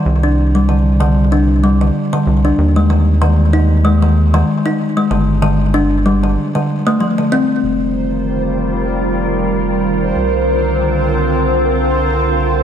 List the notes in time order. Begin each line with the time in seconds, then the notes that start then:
0.06 C2
0.23 D4
0.55 G3
0.69 D3
1.00 D3
1.32 D4
1.64 G3
1.81 D3
2.13 D3
2.27 C2
2.45 D4
2.58 D#2
2.76 G#3
2.90 D#3
3.22 D#3
3.53 D#4
3.85 G#3
4.02 D#3
4.34 D#3
4.66 D#4
4.97 G#3
5.11 G1 D3
5.42 D3
5.74 D4
6.06 G3
6.24 D3
6.55 D3
6.87 A3
7.00 F3
7.18 D3
7.32 C4
7.64 F1 D#3 G3 F4 A#4 C5
10.16 C2 D3 C4 F4